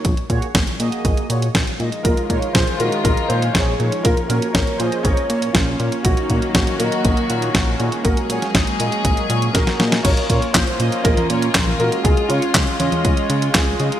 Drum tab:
CC |----------------|----------------|----------------|----------------|
HH |xxxxxxxxxxxxxxxx|xxxxxxxxxxxxx-xx|xxxxxxxxxxxxx-xx|xxxxxxxxxxxxx-xx|
CP |----------------|----------------|----------------|----------------|
SD |----o-------o---|----o-------o---|----o-------o---|----o-------o---|
CG |----------------|----------------|----------------|----------------|
BD |o-o-o---o---o---|o-o-o---o---o---|o---o---o---o---|o-o-o---o---o---|

CC |----------------|x---------------|----------------|
HH |xxxxxxxxxxxxxxxx|xxxxxxxxxxxxx-xx|xxxxxxxxxxxxx-xx|
CP |----------------|----x-------x---|----x-------x---|
SD |---oo-------oooo|----o-------o---|----o-------o---|
CG |----------------|---------o---o--|------oo--------|
BD |o---o---o---o---|o-o-o---o---o---|o---o---o---o---|